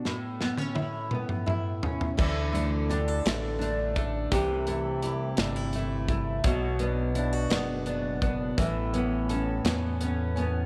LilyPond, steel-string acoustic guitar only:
\new Staff \with { instrumentName = "Steel-string acoustic guitar" } { \time 6/8 \key d \major \tempo 4. = 56 r2. | e8 d'8 g'16 a'16 d'8 a8 d'8 | e8 e'8 g'8 d'16 e'16 a8 e'8 | fis8 d'8 e'16 fis'16 d'8 b8 d'8 |
e8 cis'8 a'8 cis'8 b8 cis'8 | }